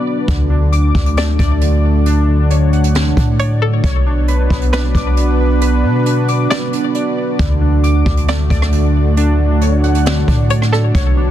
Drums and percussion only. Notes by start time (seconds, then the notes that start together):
0.28 kick, closed hi-hat
0.73 closed hi-hat
0.95 kick, closed hi-hat
1.06 closed hi-hat
1.17 snare, closed hi-hat
1.39 kick, closed hi-hat
1.61 closed hi-hat
2.06 closed hi-hat
2.50 closed hi-hat
2.73 closed hi-hat
2.84 closed hi-hat
2.95 snare, closed hi-hat
3.17 kick, closed hi-hat
3.39 closed hi-hat
3.84 kick, closed hi-hat
4.28 closed hi-hat
4.50 kick, closed hi-hat
4.61 closed hi-hat
4.73 snare, closed hi-hat
4.95 kick, closed hi-hat
5.17 closed hi-hat
5.61 closed hi-hat
6.06 closed hi-hat
6.28 closed hi-hat
6.50 snare, closed hi-hat
6.73 closed hi-hat
6.95 closed hi-hat
7.39 kick, closed hi-hat
7.84 closed hi-hat
8.06 kick, closed hi-hat
8.17 closed hi-hat
8.28 snare, closed hi-hat
8.50 kick, closed hi-hat
8.62 cross-stick
8.72 closed hi-hat
9.17 closed hi-hat
9.61 closed hi-hat
9.84 closed hi-hat
9.95 closed hi-hat
10.06 snare, closed hi-hat
10.28 kick, closed hi-hat
10.50 closed hi-hat
10.62 cross-stick
10.73 cross-stick
10.95 kick, closed hi-hat